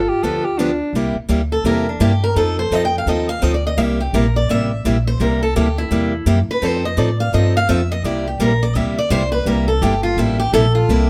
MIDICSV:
0, 0, Header, 1, 6, 480
1, 0, Start_track
1, 0, Tempo, 355450
1, 1264, Time_signature, 4, 2, 24, 8
1, 14988, End_track
2, 0, Start_track
2, 0, Title_t, "Steel-string acoustic guitar"
2, 0, Program_c, 0, 25
2, 0, Note_on_c, 0, 65, 77
2, 1023, Note_off_c, 0, 65, 0
2, 2054, Note_on_c, 0, 69, 73
2, 2227, Note_off_c, 0, 69, 0
2, 2246, Note_on_c, 0, 70, 81
2, 2520, Note_off_c, 0, 70, 0
2, 2551, Note_on_c, 0, 62, 45
2, 2716, Note_off_c, 0, 62, 0
2, 2723, Note_on_c, 0, 67, 70
2, 2999, Note_off_c, 0, 67, 0
2, 3019, Note_on_c, 0, 70, 86
2, 3190, Note_off_c, 0, 70, 0
2, 3196, Note_on_c, 0, 69, 73
2, 3475, Note_off_c, 0, 69, 0
2, 3497, Note_on_c, 0, 72, 71
2, 3689, Note_off_c, 0, 72, 0
2, 3689, Note_on_c, 0, 75, 78
2, 3833, Note_off_c, 0, 75, 0
2, 3847, Note_on_c, 0, 79, 81
2, 3991, Note_off_c, 0, 79, 0
2, 4025, Note_on_c, 0, 77, 74
2, 4161, Note_off_c, 0, 77, 0
2, 4171, Note_on_c, 0, 75, 76
2, 4437, Note_off_c, 0, 75, 0
2, 4442, Note_on_c, 0, 77, 99
2, 4635, Note_off_c, 0, 77, 0
2, 4635, Note_on_c, 0, 75, 80
2, 4777, Note_off_c, 0, 75, 0
2, 4783, Note_on_c, 0, 74, 72
2, 4939, Note_off_c, 0, 74, 0
2, 4951, Note_on_c, 0, 75, 80
2, 5100, Note_off_c, 0, 75, 0
2, 5100, Note_on_c, 0, 76, 80
2, 5387, Note_off_c, 0, 76, 0
2, 5408, Note_on_c, 0, 67, 54
2, 5584, Note_off_c, 0, 67, 0
2, 5589, Note_on_c, 0, 70, 69
2, 5872, Note_off_c, 0, 70, 0
2, 5891, Note_on_c, 0, 74, 80
2, 6066, Note_off_c, 0, 74, 0
2, 6085, Note_on_c, 0, 76, 102
2, 6795, Note_off_c, 0, 76, 0
2, 6852, Note_on_c, 0, 72, 77
2, 7026, Note_off_c, 0, 72, 0
2, 7034, Note_on_c, 0, 70, 67
2, 7314, Note_off_c, 0, 70, 0
2, 7327, Note_on_c, 0, 69, 76
2, 7503, Note_off_c, 0, 69, 0
2, 7510, Note_on_c, 0, 67, 68
2, 7792, Note_off_c, 0, 67, 0
2, 7809, Note_on_c, 0, 64, 65
2, 8423, Note_off_c, 0, 64, 0
2, 8787, Note_on_c, 0, 71, 79
2, 8968, Note_off_c, 0, 71, 0
2, 8968, Note_on_c, 0, 72, 67
2, 9240, Note_off_c, 0, 72, 0
2, 9254, Note_on_c, 0, 75, 85
2, 9437, Note_off_c, 0, 75, 0
2, 9437, Note_on_c, 0, 74, 74
2, 9715, Note_off_c, 0, 74, 0
2, 9725, Note_on_c, 0, 77, 88
2, 9902, Note_off_c, 0, 77, 0
2, 9914, Note_on_c, 0, 75, 82
2, 10193, Note_off_c, 0, 75, 0
2, 10219, Note_on_c, 0, 77, 105
2, 10389, Note_off_c, 0, 77, 0
2, 10401, Note_on_c, 0, 76, 84
2, 10677, Note_off_c, 0, 76, 0
2, 10690, Note_on_c, 0, 75, 87
2, 10864, Note_off_c, 0, 75, 0
2, 10873, Note_on_c, 0, 74, 71
2, 11153, Note_off_c, 0, 74, 0
2, 11174, Note_on_c, 0, 67, 44
2, 11346, Note_off_c, 0, 67, 0
2, 11368, Note_on_c, 0, 70, 72
2, 11640, Note_off_c, 0, 70, 0
2, 11648, Note_on_c, 0, 74, 76
2, 11828, Note_off_c, 0, 74, 0
2, 11828, Note_on_c, 0, 76, 95
2, 12110, Note_off_c, 0, 76, 0
2, 12133, Note_on_c, 0, 74, 87
2, 12304, Note_off_c, 0, 74, 0
2, 12309, Note_on_c, 0, 72, 78
2, 12577, Note_off_c, 0, 72, 0
2, 12582, Note_on_c, 0, 71, 85
2, 12769, Note_off_c, 0, 71, 0
2, 12786, Note_on_c, 0, 70, 74
2, 13064, Note_off_c, 0, 70, 0
2, 13069, Note_on_c, 0, 69, 81
2, 13253, Note_off_c, 0, 69, 0
2, 13258, Note_on_c, 0, 67, 68
2, 13542, Note_off_c, 0, 67, 0
2, 13547, Note_on_c, 0, 65, 80
2, 13732, Note_off_c, 0, 65, 0
2, 13743, Note_on_c, 0, 64, 74
2, 14027, Note_off_c, 0, 64, 0
2, 14037, Note_on_c, 0, 67, 86
2, 14217, Note_off_c, 0, 67, 0
2, 14226, Note_on_c, 0, 69, 95
2, 14508, Note_off_c, 0, 69, 0
2, 14514, Note_on_c, 0, 65, 80
2, 14722, Note_off_c, 0, 65, 0
2, 14722, Note_on_c, 0, 64, 67
2, 14988, Note_off_c, 0, 64, 0
2, 14988, End_track
3, 0, Start_track
3, 0, Title_t, "Soprano saxophone"
3, 0, Program_c, 1, 64
3, 0, Note_on_c, 1, 69, 87
3, 116, Note_on_c, 1, 67, 84
3, 136, Note_off_c, 1, 69, 0
3, 312, Note_on_c, 1, 69, 80
3, 332, Note_off_c, 1, 67, 0
3, 599, Note_on_c, 1, 67, 77
3, 619, Note_off_c, 1, 69, 0
3, 784, Note_on_c, 1, 62, 71
3, 805, Note_off_c, 1, 67, 0
3, 1264, Note_off_c, 1, 62, 0
3, 14988, End_track
4, 0, Start_track
4, 0, Title_t, "Steel-string acoustic guitar"
4, 0, Program_c, 2, 25
4, 316, Note_on_c, 2, 50, 67
4, 322, Note_on_c, 2, 59, 68
4, 325, Note_on_c, 2, 53, 70
4, 330, Note_on_c, 2, 67, 73
4, 333, Note_on_c, 2, 62, 67
4, 591, Note_off_c, 2, 50, 0
4, 594, Note_off_c, 2, 59, 0
4, 595, Note_off_c, 2, 53, 0
4, 598, Note_off_c, 2, 67, 0
4, 599, Note_off_c, 2, 62, 0
4, 795, Note_on_c, 2, 50, 80
4, 801, Note_on_c, 2, 53, 81
4, 809, Note_on_c, 2, 59, 82
4, 810, Note_on_c, 2, 62, 77
4, 811, Note_on_c, 2, 67, 89
4, 938, Note_off_c, 2, 50, 0
4, 941, Note_off_c, 2, 53, 0
4, 945, Note_off_c, 2, 59, 0
4, 946, Note_off_c, 2, 62, 0
4, 946, Note_off_c, 2, 67, 0
4, 1285, Note_on_c, 2, 48, 58
4, 1288, Note_on_c, 2, 55, 65
4, 1290, Note_on_c, 2, 58, 59
4, 1291, Note_on_c, 2, 64, 72
4, 1299, Note_on_c, 2, 67, 67
4, 1556, Note_off_c, 2, 48, 0
4, 1557, Note_off_c, 2, 55, 0
4, 1558, Note_off_c, 2, 58, 0
4, 1559, Note_off_c, 2, 64, 0
4, 1562, Note_off_c, 2, 67, 0
4, 1736, Note_on_c, 2, 48, 76
4, 1741, Note_on_c, 2, 55, 74
4, 1747, Note_on_c, 2, 58, 81
4, 1748, Note_on_c, 2, 64, 84
4, 1755, Note_on_c, 2, 67, 83
4, 1889, Note_off_c, 2, 48, 0
4, 1892, Note_off_c, 2, 55, 0
4, 1894, Note_off_c, 2, 58, 0
4, 1895, Note_off_c, 2, 64, 0
4, 1898, Note_off_c, 2, 67, 0
4, 2223, Note_on_c, 2, 48, 65
4, 2226, Note_on_c, 2, 55, 65
4, 2231, Note_on_c, 2, 64, 66
4, 2234, Note_on_c, 2, 58, 75
4, 2236, Note_on_c, 2, 67, 66
4, 2505, Note_off_c, 2, 48, 0
4, 2506, Note_off_c, 2, 55, 0
4, 2509, Note_off_c, 2, 64, 0
4, 2510, Note_off_c, 2, 58, 0
4, 2511, Note_off_c, 2, 67, 0
4, 2701, Note_on_c, 2, 48, 85
4, 2708, Note_on_c, 2, 55, 89
4, 2711, Note_on_c, 2, 58, 89
4, 2711, Note_on_c, 2, 64, 91
4, 2712, Note_on_c, 2, 67, 84
4, 2852, Note_off_c, 2, 48, 0
4, 2855, Note_off_c, 2, 55, 0
4, 2856, Note_off_c, 2, 58, 0
4, 2856, Note_off_c, 2, 64, 0
4, 2857, Note_off_c, 2, 67, 0
4, 3189, Note_on_c, 2, 53, 65
4, 3192, Note_on_c, 2, 60, 71
4, 3196, Note_on_c, 2, 63, 65
4, 3198, Note_on_c, 2, 69, 69
4, 3468, Note_off_c, 2, 53, 0
4, 3469, Note_off_c, 2, 60, 0
4, 3471, Note_off_c, 2, 63, 0
4, 3472, Note_off_c, 2, 69, 0
4, 3668, Note_on_c, 2, 53, 71
4, 3673, Note_on_c, 2, 60, 79
4, 3676, Note_on_c, 2, 69, 80
4, 3677, Note_on_c, 2, 63, 78
4, 3815, Note_off_c, 2, 53, 0
4, 3818, Note_off_c, 2, 60, 0
4, 3819, Note_off_c, 2, 63, 0
4, 3819, Note_off_c, 2, 69, 0
4, 4143, Note_on_c, 2, 53, 61
4, 4151, Note_on_c, 2, 60, 69
4, 4154, Note_on_c, 2, 63, 67
4, 4158, Note_on_c, 2, 69, 79
4, 4425, Note_off_c, 2, 53, 0
4, 4429, Note_off_c, 2, 60, 0
4, 4430, Note_off_c, 2, 63, 0
4, 4432, Note_off_c, 2, 69, 0
4, 4616, Note_on_c, 2, 53, 85
4, 4621, Note_on_c, 2, 60, 97
4, 4625, Note_on_c, 2, 63, 87
4, 4632, Note_on_c, 2, 69, 82
4, 4769, Note_off_c, 2, 53, 0
4, 4772, Note_off_c, 2, 60, 0
4, 4774, Note_off_c, 2, 63, 0
4, 4777, Note_off_c, 2, 69, 0
4, 5099, Note_on_c, 2, 48, 68
4, 5099, Note_on_c, 2, 58, 73
4, 5102, Note_on_c, 2, 55, 67
4, 5102, Note_on_c, 2, 64, 71
4, 5106, Note_on_c, 2, 67, 75
4, 5383, Note_off_c, 2, 48, 0
4, 5383, Note_off_c, 2, 58, 0
4, 5384, Note_off_c, 2, 55, 0
4, 5384, Note_off_c, 2, 64, 0
4, 5386, Note_off_c, 2, 67, 0
4, 5589, Note_on_c, 2, 48, 83
4, 5591, Note_on_c, 2, 55, 71
4, 5596, Note_on_c, 2, 58, 82
4, 5598, Note_on_c, 2, 64, 87
4, 5599, Note_on_c, 2, 67, 87
4, 5736, Note_off_c, 2, 48, 0
4, 5737, Note_off_c, 2, 55, 0
4, 5739, Note_off_c, 2, 58, 0
4, 5740, Note_off_c, 2, 64, 0
4, 5741, Note_off_c, 2, 67, 0
4, 6068, Note_on_c, 2, 48, 68
4, 6076, Note_on_c, 2, 58, 64
4, 6077, Note_on_c, 2, 55, 71
4, 6078, Note_on_c, 2, 64, 69
4, 6081, Note_on_c, 2, 67, 74
4, 6347, Note_off_c, 2, 48, 0
4, 6351, Note_off_c, 2, 58, 0
4, 6352, Note_off_c, 2, 55, 0
4, 6352, Note_off_c, 2, 64, 0
4, 6354, Note_off_c, 2, 67, 0
4, 6550, Note_on_c, 2, 48, 73
4, 6551, Note_on_c, 2, 55, 83
4, 6557, Note_on_c, 2, 58, 85
4, 6558, Note_on_c, 2, 64, 88
4, 6565, Note_on_c, 2, 67, 91
4, 6696, Note_off_c, 2, 48, 0
4, 6697, Note_off_c, 2, 55, 0
4, 6699, Note_off_c, 2, 58, 0
4, 6700, Note_off_c, 2, 64, 0
4, 6703, Note_off_c, 2, 67, 0
4, 7020, Note_on_c, 2, 48, 65
4, 7026, Note_on_c, 2, 55, 63
4, 7027, Note_on_c, 2, 58, 64
4, 7030, Note_on_c, 2, 64, 68
4, 7038, Note_on_c, 2, 67, 67
4, 7303, Note_off_c, 2, 48, 0
4, 7306, Note_off_c, 2, 55, 0
4, 7307, Note_off_c, 2, 58, 0
4, 7308, Note_off_c, 2, 64, 0
4, 7312, Note_off_c, 2, 67, 0
4, 7507, Note_on_c, 2, 48, 81
4, 7510, Note_on_c, 2, 55, 85
4, 7510, Note_on_c, 2, 58, 82
4, 7512, Note_on_c, 2, 64, 82
4, 7514, Note_on_c, 2, 67, 88
4, 7654, Note_off_c, 2, 48, 0
4, 7656, Note_off_c, 2, 55, 0
4, 7656, Note_off_c, 2, 58, 0
4, 7657, Note_off_c, 2, 64, 0
4, 7658, Note_off_c, 2, 67, 0
4, 7977, Note_on_c, 2, 48, 66
4, 7988, Note_on_c, 2, 55, 71
4, 7990, Note_on_c, 2, 67, 70
4, 7991, Note_on_c, 2, 58, 72
4, 7991, Note_on_c, 2, 64, 73
4, 8261, Note_off_c, 2, 48, 0
4, 8267, Note_off_c, 2, 55, 0
4, 8268, Note_off_c, 2, 58, 0
4, 8268, Note_off_c, 2, 64, 0
4, 8268, Note_off_c, 2, 67, 0
4, 8456, Note_on_c, 2, 48, 90
4, 8459, Note_on_c, 2, 55, 86
4, 8466, Note_on_c, 2, 58, 97
4, 8468, Note_on_c, 2, 64, 93
4, 8473, Note_on_c, 2, 67, 85
4, 8609, Note_off_c, 2, 48, 0
4, 8610, Note_off_c, 2, 55, 0
4, 8614, Note_off_c, 2, 58, 0
4, 8615, Note_off_c, 2, 64, 0
4, 8617, Note_off_c, 2, 67, 0
4, 8939, Note_on_c, 2, 53, 70
4, 8941, Note_on_c, 2, 60, 68
4, 8948, Note_on_c, 2, 63, 71
4, 8955, Note_on_c, 2, 69, 75
4, 9222, Note_off_c, 2, 53, 0
4, 9223, Note_off_c, 2, 60, 0
4, 9227, Note_off_c, 2, 63, 0
4, 9230, Note_off_c, 2, 69, 0
4, 9412, Note_on_c, 2, 53, 80
4, 9419, Note_on_c, 2, 63, 81
4, 9422, Note_on_c, 2, 60, 76
4, 9428, Note_on_c, 2, 69, 84
4, 9566, Note_off_c, 2, 53, 0
4, 9570, Note_off_c, 2, 63, 0
4, 9572, Note_off_c, 2, 60, 0
4, 9574, Note_off_c, 2, 69, 0
4, 9896, Note_on_c, 2, 53, 62
4, 9905, Note_on_c, 2, 63, 71
4, 9908, Note_on_c, 2, 60, 66
4, 9910, Note_on_c, 2, 69, 75
4, 10180, Note_off_c, 2, 53, 0
4, 10185, Note_off_c, 2, 63, 0
4, 10186, Note_off_c, 2, 60, 0
4, 10187, Note_off_c, 2, 69, 0
4, 10381, Note_on_c, 2, 53, 92
4, 10381, Note_on_c, 2, 60, 95
4, 10384, Note_on_c, 2, 63, 97
4, 10387, Note_on_c, 2, 69, 98
4, 10530, Note_off_c, 2, 60, 0
4, 10531, Note_off_c, 2, 53, 0
4, 10532, Note_off_c, 2, 63, 0
4, 10534, Note_off_c, 2, 69, 0
4, 10862, Note_on_c, 2, 48, 68
4, 10866, Note_on_c, 2, 55, 61
4, 10867, Note_on_c, 2, 58, 64
4, 10875, Note_on_c, 2, 64, 71
4, 10876, Note_on_c, 2, 67, 70
4, 11143, Note_off_c, 2, 48, 0
4, 11145, Note_off_c, 2, 55, 0
4, 11146, Note_off_c, 2, 58, 0
4, 11150, Note_off_c, 2, 64, 0
4, 11150, Note_off_c, 2, 67, 0
4, 11339, Note_on_c, 2, 48, 86
4, 11344, Note_on_c, 2, 55, 79
4, 11347, Note_on_c, 2, 58, 86
4, 11348, Note_on_c, 2, 67, 83
4, 11351, Note_on_c, 2, 64, 85
4, 11489, Note_off_c, 2, 48, 0
4, 11492, Note_off_c, 2, 55, 0
4, 11493, Note_off_c, 2, 58, 0
4, 11494, Note_off_c, 2, 67, 0
4, 11495, Note_off_c, 2, 64, 0
4, 11818, Note_on_c, 2, 48, 65
4, 11820, Note_on_c, 2, 55, 62
4, 11825, Note_on_c, 2, 67, 74
4, 11826, Note_on_c, 2, 58, 70
4, 11826, Note_on_c, 2, 64, 68
4, 12101, Note_off_c, 2, 48, 0
4, 12102, Note_off_c, 2, 55, 0
4, 12104, Note_off_c, 2, 67, 0
4, 12105, Note_off_c, 2, 58, 0
4, 12105, Note_off_c, 2, 64, 0
4, 12293, Note_on_c, 2, 48, 98
4, 12294, Note_on_c, 2, 55, 89
4, 12298, Note_on_c, 2, 64, 95
4, 12305, Note_on_c, 2, 58, 94
4, 12306, Note_on_c, 2, 67, 101
4, 12446, Note_off_c, 2, 48, 0
4, 12447, Note_off_c, 2, 55, 0
4, 12449, Note_off_c, 2, 64, 0
4, 12452, Note_off_c, 2, 58, 0
4, 12453, Note_off_c, 2, 67, 0
4, 12779, Note_on_c, 2, 48, 72
4, 12780, Note_on_c, 2, 55, 72
4, 12785, Note_on_c, 2, 58, 71
4, 12786, Note_on_c, 2, 67, 82
4, 12790, Note_on_c, 2, 64, 73
4, 13061, Note_off_c, 2, 48, 0
4, 13062, Note_off_c, 2, 55, 0
4, 13064, Note_off_c, 2, 58, 0
4, 13065, Note_off_c, 2, 67, 0
4, 13066, Note_off_c, 2, 64, 0
4, 13267, Note_on_c, 2, 55, 84
4, 13268, Note_on_c, 2, 48, 78
4, 13272, Note_on_c, 2, 58, 92
4, 13273, Note_on_c, 2, 64, 86
4, 13277, Note_on_c, 2, 67, 86
4, 13413, Note_off_c, 2, 55, 0
4, 13414, Note_off_c, 2, 48, 0
4, 13416, Note_off_c, 2, 58, 0
4, 13416, Note_off_c, 2, 64, 0
4, 13418, Note_off_c, 2, 67, 0
4, 13749, Note_on_c, 2, 48, 71
4, 13755, Note_on_c, 2, 64, 77
4, 13758, Note_on_c, 2, 55, 66
4, 13759, Note_on_c, 2, 58, 71
4, 13762, Note_on_c, 2, 67, 79
4, 14026, Note_off_c, 2, 48, 0
4, 14029, Note_off_c, 2, 64, 0
4, 14031, Note_off_c, 2, 55, 0
4, 14031, Note_off_c, 2, 58, 0
4, 14033, Note_off_c, 2, 67, 0
4, 14225, Note_on_c, 2, 48, 86
4, 14233, Note_on_c, 2, 55, 86
4, 14234, Note_on_c, 2, 58, 94
4, 14237, Note_on_c, 2, 64, 91
4, 14237, Note_on_c, 2, 67, 96
4, 14372, Note_off_c, 2, 48, 0
4, 14376, Note_off_c, 2, 55, 0
4, 14376, Note_off_c, 2, 58, 0
4, 14378, Note_off_c, 2, 64, 0
4, 14378, Note_off_c, 2, 67, 0
4, 14710, Note_on_c, 2, 48, 73
4, 14717, Note_on_c, 2, 55, 69
4, 14719, Note_on_c, 2, 58, 67
4, 14720, Note_on_c, 2, 64, 64
4, 14727, Note_on_c, 2, 67, 68
4, 14986, Note_off_c, 2, 48, 0
4, 14988, Note_off_c, 2, 55, 0
4, 14988, Note_off_c, 2, 58, 0
4, 14988, Note_off_c, 2, 64, 0
4, 14988, Note_off_c, 2, 67, 0
4, 14988, End_track
5, 0, Start_track
5, 0, Title_t, "Upright bass"
5, 0, Program_c, 3, 32
5, 314, Note_on_c, 3, 38, 65
5, 1078, Note_off_c, 3, 38, 0
5, 1255, Note_on_c, 3, 36, 77
5, 1532, Note_off_c, 3, 36, 0
5, 1740, Note_on_c, 3, 38, 76
5, 2208, Note_off_c, 3, 38, 0
5, 2215, Note_on_c, 3, 40, 67
5, 2685, Note_off_c, 3, 40, 0
5, 2700, Note_on_c, 3, 43, 80
5, 3168, Note_off_c, 3, 43, 0
5, 3182, Note_on_c, 3, 41, 80
5, 3649, Note_off_c, 3, 41, 0
5, 3657, Note_on_c, 3, 41, 79
5, 4126, Note_off_c, 3, 41, 0
5, 4133, Note_on_c, 3, 39, 72
5, 4604, Note_off_c, 3, 39, 0
5, 4627, Note_on_c, 3, 38, 79
5, 5087, Note_off_c, 3, 38, 0
5, 5095, Note_on_c, 3, 36, 78
5, 5565, Note_off_c, 3, 36, 0
5, 5580, Note_on_c, 3, 34, 83
5, 6048, Note_off_c, 3, 34, 0
5, 6070, Note_on_c, 3, 33, 73
5, 6533, Note_off_c, 3, 33, 0
5, 6544, Note_on_c, 3, 34, 78
5, 7009, Note_off_c, 3, 34, 0
5, 7018, Note_on_c, 3, 36, 80
5, 7487, Note_off_c, 3, 36, 0
5, 7506, Note_on_c, 3, 38, 80
5, 7967, Note_off_c, 3, 38, 0
5, 7975, Note_on_c, 3, 40, 67
5, 8445, Note_off_c, 3, 40, 0
5, 8453, Note_on_c, 3, 42, 86
5, 8731, Note_off_c, 3, 42, 0
5, 8935, Note_on_c, 3, 41, 77
5, 9404, Note_off_c, 3, 41, 0
5, 9415, Note_on_c, 3, 45, 81
5, 9884, Note_off_c, 3, 45, 0
5, 9908, Note_on_c, 3, 43, 74
5, 10371, Note_off_c, 3, 43, 0
5, 10387, Note_on_c, 3, 41, 81
5, 10841, Note_off_c, 3, 41, 0
5, 10850, Note_on_c, 3, 36, 75
5, 11321, Note_off_c, 3, 36, 0
5, 11333, Note_on_c, 3, 34, 74
5, 11803, Note_off_c, 3, 34, 0
5, 11816, Note_on_c, 3, 38, 73
5, 12284, Note_off_c, 3, 38, 0
5, 12293, Note_on_c, 3, 36, 85
5, 12759, Note_off_c, 3, 36, 0
5, 12767, Note_on_c, 3, 36, 86
5, 13240, Note_off_c, 3, 36, 0
5, 13255, Note_on_c, 3, 31, 88
5, 13720, Note_off_c, 3, 31, 0
5, 13729, Note_on_c, 3, 33, 79
5, 14200, Note_off_c, 3, 33, 0
5, 14217, Note_on_c, 3, 34, 90
5, 14685, Note_off_c, 3, 34, 0
5, 14702, Note_on_c, 3, 36, 84
5, 14988, Note_off_c, 3, 36, 0
5, 14988, End_track
6, 0, Start_track
6, 0, Title_t, "Muted upright bass strokes"
6, 1549, Note_on_c, 9, 29, 33
6, 1684, Note_off_c, 9, 29, 0
6, 8753, Note_on_c, 9, 29, 36
6, 8888, Note_off_c, 9, 29, 0
6, 14988, End_track
0, 0, End_of_file